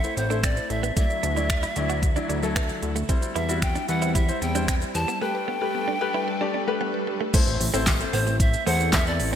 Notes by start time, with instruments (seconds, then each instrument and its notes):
Already playing: string machine A3 C4 E4, pan flute E5
0.03 grand piano A3 E4 C5, synth arpeggio sound E4, shaker
0.17 analog synth bass A1, synth arpeggio sound C4, pan flute C5, muted clean electric guitar stroke, closed hi-hat, shaker
0.30 grand piano A3 E4 C5, synth arpeggio sound A3, clean electric guitar D4, shaker
0.43 clean electric guitar C4, pan flute D5, synth arpeggio sound E5, finger snap, kick, closed hi-hat, shaker
0.57 synth arpeggio sound C5, shaker
0.70 analog synth bass A1, synth arpeggio sound A4, pan flute E5, muted clean electric guitar stroke, closed hi-hat, shaker
0.83 clean electric guitar B3, shaker
0.96 string machine D3 E4 F#4, grand piano F#3 E4 D5, clean electric guitar A3, synth arpeggio sound E5, pan flute E5, kick, closed hi-hat, shaker
1.10 synth arpeggio sound D5, shaker
1.23 analog synth bass D2, clean electric guitar D4, closed hi-hat, shaker
1.36 grand piano F#3 E4 D5, synth arpeggio sound E4, muted clean electric guitar stroke, shaker
1.50 synth arpeggio sound D4, finger snap, kick, closed hi-hat, shaker
1.63 clean electric guitar E4, shaker
1.76 analog synth bass D2, grand piano F#3 E4 D5, synth arpeggio sound E5, muted clean electric guitar stroke, closed hi-hat, shaker
1.89 clean electric guitar F#4, synth arpeggio sound D5, shaker
2.03 synth arpeggio sound F#4, muted clean electric guitar stroke, kick, closed hi-hat, shaker
2.16 grand piano F#3 E4 D5, clean electric guitar D4, synth arpeggio sound E4, shaker
2.29 analog synth bass D2, clean electric guitar D4, synth arpeggio sound D4, closed hi-hat, shaker
2.42 grand piano F#3 E4 A4, synth arpeggio sound F#3, shaker
2.56 clean electric guitar B3, synth arpeggio sound E5, finger snap, kick, closed hi-hat, shaker
2.69 synth arpeggio sound D5, shaker
2.82 analog synth bass D2, synth arpeggio sound F#4, muted clean electric guitar stroke, closed hi-hat, shaker
2.96 clean electric guitar A3, shaker
3.09 grand piano G3 E4 C5, string machine G3 C4, clean electric guitar C4, synth arpeggio sound E5, kick, closed hi-hat, shaker
3.22 synth arpeggio sound C5, muted clean electric guitar stroke, shaker
3.36 analog synth bass E2, clean electric guitar E4, pan flute E5, closed hi-hat, shaker
3.49 grand piano G3 E4 F#4, synth arpeggio sound E4, shaker
3.62 synth arpeggio sound C4, pan flute G5, finger snap, kick, closed hi-hat, shaker
3.75 clean electric guitar D4, shaker
3.88 analog synth bass E2, grand piano G3 E4 B4, synth arpeggio sound E5, pan flute F#5, muted clean electric guitar stroke, closed hi-hat, shaker
4.02 clean electric guitar E4, synth arpeggio sound C5, shaker
4.15 clean electric guitar E4, synth arpeggio sound G4, pan flute E5, kick, closed hi-hat, shaker
4.28 grand piano G3 E4 C5, synth arpeggio sound E4, shaker
4.42 analog synth bass E2, synth arpeggio sound C4, pan flute G5, muted clean electric guitar stroke, closed hi-hat, shaker
4.55 grand piano G3 E4 C5, synth arpeggio sound G3, clean electric guitar D4, shaker
4.68 clean electric guitar C4, synth arpeggio sound E5, pan flute G5, finger snap, kick, closed hi-hat, shaker
4.82 synth arpeggio sound C5, shaker
4.95 analog synth bass E2, synth arpeggio sound G4, pan flute A5, muted clean electric guitar stroke, closed hi-hat, shaker
5.08 clean electric guitar B3, shaker
5.21 grand piano A3 G4 B4, clean electric guitar A3, string machine D4 A4 B4, synth arpeggio sound G5, pan flute G5, swell
5.35 synth arpeggio sound B4
5.48 clean electric guitar B3
5.61 grand piano A3 G4 B4, synth arpeggio sound G4, muted clean electric guitar stroke
5.75 synth arpeggio sound B3
5.88 clean electric guitar D4
6.01 grand piano A3 G4 B4, synth arpeggio sound G5, muted clean electric guitar stroke
6.14 clean electric guitar E4, synth arpeggio sound B4
6.28 synth arpeggio sound A4, muted clean electric guitar stroke
6.41 grand piano A3 G4 D5, clean electric guitar D4, synth arpeggio sound G4
6.54 synth arpeggio sound B3, clean electric guitar D4
6.67 grand piano A3 G4 B4, synth arpeggio sound A3
6.81 clean electric guitar B3, synth arpeggio sound G5
6.94 synth arpeggio sound B4
7.07 synth arpeggio sound A4, muted clean electric guitar stroke
7.21 clean electric guitar A3
7.34 grand piano A3 C4 E4 C5, clean electric guitar A3, string machine A3 C4 E4, kick, closed hi-hat, crash, impact, shaker
7.47 analog synth bass A1, shaker
7.60 analog synth bass A1, muted clean electric guitar stroke, open hi-hat, shaker
7.73 analog synth bass A1, grand piano A3 C4 E4 C5, clean electric guitar C4, shaker
7.87 muted clean electric guitar stroke, kick, snare, clap, closed hi-hat, tambourine, shaker
8.00 grand piano A3 C4 E4 C5, shaker
8.13 analog synth bass A1, clean electric guitar B3, pan flute C5, open hi-hat, shaker
8.27 clean electric guitar A3, shaker
8.40 pan flute E5, kick, closed hi-hat, shaker
8.53 shaker
8.66 analog synth bass E2, grand piano A3 C4 E4 C5, clean electric guitar A3, pan flute F#5, open hi-hat, shaker
8.80 shaker
8.93 clean electric guitar B3, pan flute E5, kick, snare, clap, closed hi-hat, tambourine, shaker
9.06 grand piano A3 C4 E4 A4, pan flute D5, shaker
9.20 analog synth bass A1, muted clean electric guitar stroke, open hi-hat, shaker